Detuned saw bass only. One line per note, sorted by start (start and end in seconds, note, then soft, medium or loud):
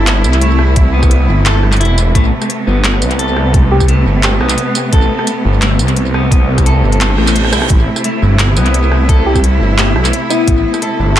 0.00 0.26 G1 loud
0.25 1.28 C2 loud
1.29 1.82 G1 loud
1.81 2.14 E1 medium
2.15 2.31 A1 loud
2.67 3.04 G1 loud
3.02 4.05 C2 loud
4.06 4.40 G1 loud
4.41 4.57 B1 medium
4.93 5.09 A1 loud
5.45 5.81 G1 loud
5.79 6.82 C2 loud
6.84 7.17 G1 loud
7.18 7.55 A1 medium
7.53 7.69 B1 medium
7.70 7.86 A1 loud
8.22 8.58 G1 loud
8.57 9.60 C2 loud
9.61 9.95 G1 loud
9.96 10.12 B1 medium
10.48 10.64 A1 loud
10.99 11.20 G1 loud